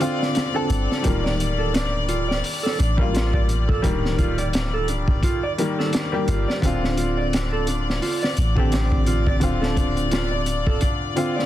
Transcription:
Already playing: F4 D5
0.00 D3 C4 F4, closed hi-hat
0.19 D5, snare
0.35 snare, closed hi-hat
0.54 D3 C4 A4
0.70 G1 D4, closed hi-hat
0.92 snare
1.02 D1 D#3 G3 A#3 F4, kick, closed hi-hat
1.24 D5, snare
1.40 closed hi-hat
1.58 A4
1.74 D4, snare, closed hi-hat
2.09 F4, closed hi-hat
2.29 D5, snare
2.44 open hi-hat
2.63 A4, snare
2.79 A1 D4, closed hi-hat
2.97 G3 A#3 F4, kick
3.14 F4, snare, closed hi-hat
3.33 D5, kick
3.49 closed hi-hat
3.68 A4, kick
3.82 D1 D#3 G3 A#3 D4, kick, closed hi-hat
4.05 snare
4.18 F4, kick, closed hi-hat
4.38 D5, closed hi-hat
4.53 snare, closed hi-hat
4.74 A4
4.88 D4, closed hi-hat
5.08 kick
5.23 F4, kick, closed hi-hat
5.43 D5
5.58 D#3 G3 A#3, closed hi-hat
5.79 A4, snare
5.93 D4, snare, closed hi-hat
6.12 G3 A#3 G4
6.28 G1 F4, closed hi-hat
6.48 D5, snare
6.62 D1 D3 C4 D4 F4 D5, kick, closed hi-hat
6.84 snare
6.97 F4, closed hi-hat
7.17 D5
7.33 snare, closed hi-hat
7.53 A4
7.67 D4, closed hi-hat
7.90 snare
8.02 F4, open hi-hat
8.23 D5, snare
8.37 A1, closed hi-hat
8.55 D3 C4 G4 A4, kick
8.72 D4, snare, closed hi-hat
8.92 kick
9.06 F4, closed hi-hat
9.27 D5, kick
9.40 D1 D3 C4 F4, kick, closed hi-hat
9.61 A4, snare
9.77 D4, kick, closed hi-hat
9.97 closed hi-hat
10.11 F4, snare, closed hi-hat
10.31 D5
10.46 closed hi-hat
10.67 A4, kick
10.81 D4, kick, closed hi-hat
11.16 D3 C4 F4, closed hi-hat
11.36 D5, snare

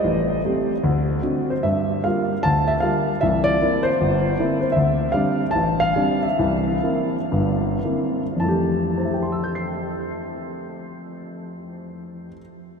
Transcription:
Already playing: D#5
0.04 A1
0.45 A3 C4 G4
0.84 D2
1.22 C4 D4 F#4
1.50 C5
1.63 G2 E5
2.04 G3 A#3 F4 F5
2.43 D2 A5
2.68 E5
2.80 G3 A#3 F4 F5
3.21 C2 E3 E5
3.44 D5
3.62 A#3 C4 E4
3.83 C5
4.01 G1
4.39 A#3 C4 E4
4.61 C5
4.72 E5
4.76 D2
5.12 G3 C4 D4 F5
5.51 A5
5.55 A1
5.80 F5
5.96 G3 C4 D4
6.23 E5
6.39 C2 E3
6.83 A#3 C4 E4
7.32 G1 G2
7.84 A#3 C4 E4
8.36 F2 A5
8.40 E3
8.45 A3 G4
8.98 C5
9.05 E5
9.14 G5
9.22 C6
9.32 E6
9.44 G6
9.55 C7

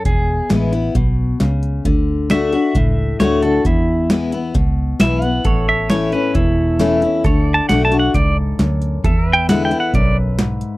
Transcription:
0.05 E1 E2 G#4, kick, closed hi-hat
0.49 A1 E3 G#3 B3 E4, snare, closed hi-hat
0.72 B3 E4, closed hi-hat
0.95 B1 B2, kick, closed hi-hat
1.40 C#2 C#3, snare, closed hi-hat
1.63 closed hi-hat
1.85 D2 D3, kick, closed hi-hat
2.30 D3 A3 D4 F#4 E5, snare, closed hi-hat
2.52 D4 F#4, closed hi-hat
2.75 C#2 A2, kick, closed hi-hat
3.20 D2 D3 A3 D4 F#4 C#5, snare, closed hi-hat
3.42 D4 F#4 A4, closed hi-hat
3.65 E2 E4, kick, closed hi-hat
4.10 E3 G#3 B3 E4, snare, closed hi-hat
4.32 B3 E4, closed hi-hat
4.54 C#2 B2, kick, closed hi-hat
4.99 B1 E3 G#3 B3 E4 E5, snare, closed hi-hat
5.22 B3 E4 F#5, closed hi-hat
5.44 A1 A2 A4 C#5, kick, closed hi-hat
5.69 E5
5.90 E3 A3 C#4 E4 C#5, snare, closed hi-hat
6.12 C#4 E4 B4, closed hi-hat
6.35 E1 E2 E4, kick, closed hi-hat
6.79 E3 A3 C#4 E4, snare, closed hi-hat
7.02 C#4 E4, closed hi-hat
7.24 D2 D3 A4 C#5, kick, closed hi-hat
7.46 D5
7.54 A5
7.69 B1 D3 A3 D4 F#4 F#5, snare, closed hi-hat
7.85 A5
7.92 D4 F#4, closed hi-hat
7.99 F#5
8.14 C#2 G#2 D5, kick, closed hi-hat
8.59 D2 F#2, snare, closed hi-hat
8.82 closed hi-hat
9.04 E2 A4 E5, kick, closed hi-hat
9.29 B4 G5
9.49 D3 G#3 B3 E4 F#5, snare, closed hi-hat
9.65 G5
9.71 B3 E4, closed hi-hat
9.80 F#5
9.94 B1 F#2 D5, kick, closed hi-hat
10.39 G#2, snare, closed hi-hat
10.61 closed hi-hat

